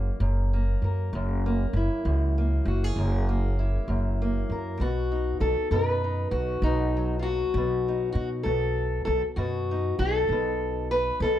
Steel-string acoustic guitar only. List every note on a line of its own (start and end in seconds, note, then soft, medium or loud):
0.00 0.20 F#2 medium
0.00 0.52 A#3 soft
0.00 0.83 A#4 soft
0.21 1.13 F#2 medium
0.53 1.44 A#3 soft
0.84 1.10 A#4 soft
1.15 2.05 F#2 medium
1.46 2.37 A#3 medium
1.76 3.58 E4 medium
2.06 2.97 F#2 medium
2.38 3.28 A#3 medium
2.68 2.84 F#4 medium
2.84 4.51 G#4 soft
2.99 3.88 F#2 medium
3.29 4.20 A#3 medium
3.59 4.77 E4 medium
3.89 4.80 F#2 medium
4.22 4.82 A#3 medium
4.52 4.78 A#4 medium
4.81 5.72 B2 medium
4.81 5.41 F#4 medium
5.12 6.04 D#4 soft
5.41 5.71 A4 medium
5.72 6.65 B2 medium
5.72 6.31 B4 medium
6.04 6.62 D#4 soft
6.31 7.21 F#4 medium
6.63 7.56 B2 medium
6.63 7.18 D#4 medium
6.97 11.39 F#3 soft
7.19 7.26 F4 medium
7.19 8.11 F#4 medium
7.57 8.44 B2 medium
7.88 8.45 D#4 soft
8.12 8.29 F#4 medium
8.43 9.04 A4 medium
8.48 9.37 B2 medium
9.05 9.21 A4 loud
9.36 10.30 B2 medium
9.36 9.99 F#4 medium
9.71 11.39 D#4 soft
9.99 10.91 A4 loud
10.32 11.22 B2 medium
10.91 11.22 B4 loud
11.22 11.39 B2 medium
11.22 11.39 A4 loud